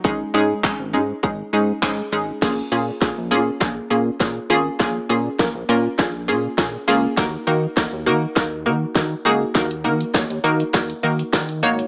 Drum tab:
CC |----------------|x---------------|----------------|----------------|
HH |----------------|----------------|----------------|----------------|
CP |----x-------x---|----------------|----------------|----------------|
SD |----------------|o---o---o---o---|o---o---o---o---|o---o---o---o---|
BD |o---o---o---o---|o---o---o---o---|o---o---o---o---|o---o---o---o---|

CC |----------------|
HH |xx-xxx-xxx-xxx-x|
CP |----------------|
SD |o---o---o---o---|
BD |o---o---o---o---|